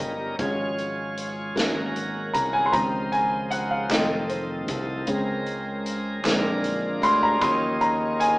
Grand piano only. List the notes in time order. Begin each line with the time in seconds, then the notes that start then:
Already playing: F3 G3 C#4 A#4 C5 C#5 D#5 F5
0.39 F3 G#3 C#4
1.55 F#3 A#3 C#4
2.34 A#5
2.53 G#5
2.66 C6
2.72 D#3 F3 C4 A#5
3.12 G#5
3.51 F#5
3.71 F5
3.90 D#3 A3 C4 D#5
4.29 C5
5.07 C#3 G#3 C4
6.24 D3 G#3 C4
7.03 C6
7.23 A#5
7.40 F3 F#3 C#4 C6
7.81 A#5
8.20 G#5